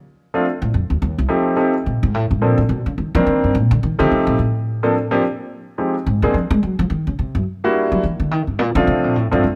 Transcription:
0.34 grand piano F3 A3 C4 D4 F4
0.62 upright bass A2
0.74 upright bass F2
0.90 upright bass D2
1.02 upright bass D#2
1.18 upright bass C2
1.29 grand piano F3 A3 C4 D#4 G4
1.56 grand piano F3 A3 C4 D#4 G4
1.86 upright bass A#2
2.03 upright bass G#2
2.14 upright bass A2
2.31 upright bass G2
2.42 upright bass A#2, grand piano F3 A#3 C4 D4 A4
2.58 upright bass A2
2.69 upright bass B2
2.86 upright bass C#3
2.98 upright bass D#3
3.15 grand piano D#3 A#3 C4 D4 A#4, upright bass F3
3.26 upright bass D#3
3.44 upright bass G2
3.55 upright bass A#2
3.71 upright bass D3
3.83 upright bass D#3
3.99 upright bass D3, grand piano F3 A3 C4 D#4 G4
4.12 upright bass C3
4.27 upright bass A#2
4.39 upright bass A2
4.83 grand piano F3 A#3 C4 D4 A4
5.11 grand piano F3 A#3 C4 D4 G4
5.78 grand piano F3 G#3 C4 D#4 G4
6.06 upright bass G#2
6.22 upright bass C3, grand piano G#3 A#3 C4 D4 G#4
6.34 upright bass F3
6.51 upright bass G#3
6.63 upright bass F#3
6.79 upright bass F3
6.90 upright bass D#3
7.07 upright bass C#3
7.19 upright bass C3
7.35 upright bass F#2
7.64 grand piano G3 A#3 D4 E4 F#4
7.92 upright bass F#3
8.03 upright bass E3
8.20 upright bass D3
8.31 upright bass D#3
8.47 upright bass G2
8.59 upright bass A#2
8.75 upright bass C#3, grand piano F3 A3 C4 D4 F4
8.87 upright bass C3
9.04 upright bass A#2
9.16 upright bass A2
9.31 upright bass G2, grand piano F3 A3 C4 D4 F4
9.44 upright bass F2

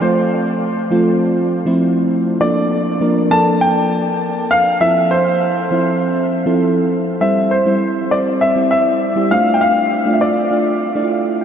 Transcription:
Already playing: fm electric piano A4
0.00 fm electric piano F3 A3 C4 F4, grand piano C5
0.91 fm electric piano F3 A3 C4 F4
1.66 fm electric piano F3 A3 C4 E4
2.41 fm electric piano F3 A#3 D4 A4, grand piano D5
3.01 fm electric piano F3 A#3 D4 A#4
3.31 fm electric piano F3 A#3 D4 A4, grand piano A5
3.61 grand piano G5
4.51 grand piano F5
4.81 fm electric piano F3 C4 E4 A4, grand piano E5
5.11 grand piano C5
5.71 fm electric piano F3 C4 E4 C5
6.46 fm electric piano F3 C4 E4 A4
7.21 fm electric piano G3 C4 E4 C5, grand piano E5
7.51 grand piano C5
7.66 fm electric piano G3 C4 E4 C5
8.11 fm electric piano G3 C4 E4 C5, grand piano D5
8.41 grand piano E5
8.56 fm electric piano G3 C4 E4 D5
8.71 grand piano E5
9.16 fm electric piano G3 C4 E4 G4
9.31 fm electric piano A3 D4 F4 D5, grand piano F5
9.54 grand piano G5
9.61 grand piano F5
10.06 fm electric piano A3 D4 F4 D5
10.14 grand piano E5
10.21 grand piano D5
10.51 fm electric piano A3 D4 F4 D5
10.95 fm electric piano A3 D4 E4 D5
11.03 fm electric piano F4
11.11 fm electric piano F5
11.41 fm electric piano G5

